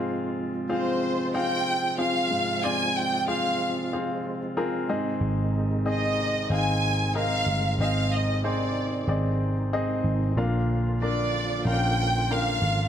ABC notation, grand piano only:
X:1
M:4/4
L:1/8
Q:1/4=93
K:Ablyd
V:1 name="Grand piano"
[CFAf] z [CFAf] z [CFAf] z [CFAf] z | [CFAd] z [CFAf] z [CFAf] z [CFAB] [CEAe]- | [CEAe] z [CEAe] z [CEAf] z [CEAB] z | [CEAe] z [CEAc] z [CEAd] z [CEAe] z |
[DFBf] z [DFBd] z [_D=DFBf] z [DFBg] z |]
V:2 name="Grand piano" clef=bass
A,,2 z4 z A,,- | A,,2 z4 z A,,- | A,,2 z4 z A,- | A,2 z6 |
B,,3 z4 z |]